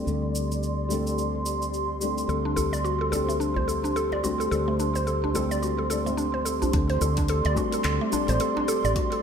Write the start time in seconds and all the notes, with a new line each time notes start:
Already playing: G3 A3 C4 D4 G4 A4 D5 C6
0.04 D2 G3 A3 C4 D4 A4, shaker
0.35 shaker
0.52 shaker
0.63 shaker
0.89 G3 A3 C4 D4, shaker
0.93 A4
1.07 shaker
1.18 shaker
1.46 shaker
1.62 shaker
1.74 shaker
2.01 G3 A3 C4 D4 A4, shaker
2.18 shaker
2.27 D2 G3 A3 C4 D4 A4 C5, shaker
2.45 D4
2.56 A4, djembe bass, shaker
2.73 D5, djembe slap, shaker
2.84 F#4, shaker
3.01 A4
3.10 G3 A3 C4 D4 A4, djembe slap, djembe tone, shaker
3.15 A4
3.28 A3, djembe slap, shaker
3.40 D4, shaker
3.56 C5, djembe bass
3.68 A4, shaker
3.84 D4, djembe slap, shaker
3.96 A4, shaker
4.12 D5, djembe slap
4.23 G3 A3 C4 D4 F#4 A4, djembe tone, shaker
4.40 A4, shaker
4.49 D2 G3 A3 C4 D4 A4, shaker
4.53 A4
4.68 A3
4.80 D4, shaker
4.95 C5, djembe slap, shaker
5.07 A4, shaker
5.24 D4, djembe tone
5.34 G3 A3 C4 D4 A4, djembe slap, djembe tone, shaker
5.51 D5, shaker
5.63 F#4, shaker
5.78 A4
5.90 G3 A3 C4 D4 A4 D5, shaker
6.05 G3 A3 C4 D4, shaker
6.09 D5
6.17 D4, shaker
6.34 C5
6.45 A4, shaker
6.62 D4, djembe bass, shaker
6.72 D2 G3 A3 C4 D4 G4 A4 D5 C6, kick, open hi-hat, shaker
6.90 C5, open hi-hat
7.01 D2 A4, djembe tone, shaker
7.17 D4, kick, open hi-hat, djembe slap, shaker
7.28 A4, open hi-hat, shaker
7.45 D2 D5, open hi-hat
7.55 G3 A3 C4 D4 F#4 A4, kick, djembe slap, djembe tone, shaker
7.72 A4, open hi-hat, djembe slap, shaker
7.84 D2 A4, clap, open hi-hat, shaker
8.01 A3
8.11 G3 A3 C4 D4 D5, djembe tone, shaker
8.27 A1 G3 A3 C4 D4 C5 D5, open hi-hat, djembe slap, shaker
8.40 A4, open hi-hat, shaker
8.57 D4, djembe slap
8.68 A4, shaker
8.84 A1 D5, shaker
8.94 G3 A3 C4 D4 F#4, kick, open hi-hat, shaker
8.98 A4
9.12 A4, open hi-hat